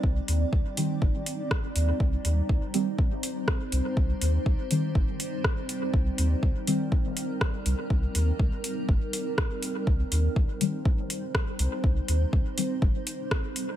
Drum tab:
HH |-o-o-o-o|-o-o-o-o|-o-o-o-o|-o-o-o-o|
SD |------r-|------r-|------r-|------r-|
BD |o-o-o-o-|o-o-o-o-|o-o-o-o-|o-o-o-o-|

HH |-o-o-o-o|-o-o-o-o|-o-o-o-o|
SD |------r-|------r-|------r-|
BD |o-o-o-o-|o-o-o-o-|o-o-o-o-|